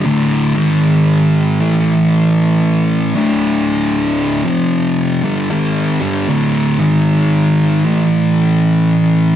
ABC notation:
X:1
M:4/4
L:1/8
Q:"Swing" 1/4=77
K:Am
V:1 name="Distorted electric guitar" clef=bass
[D,,A,,D,] [^G,,^D,^G,]3 [A,,E,A,]4 | [D,,A,,D,]3 [F,,C,F,]2 [G,,D,G,] [^G,,_E,^G,] [=G,,D,=G,] | [D,,A,,D,] [^G,,^D,^G,]3 [A,,E,A,]4 |]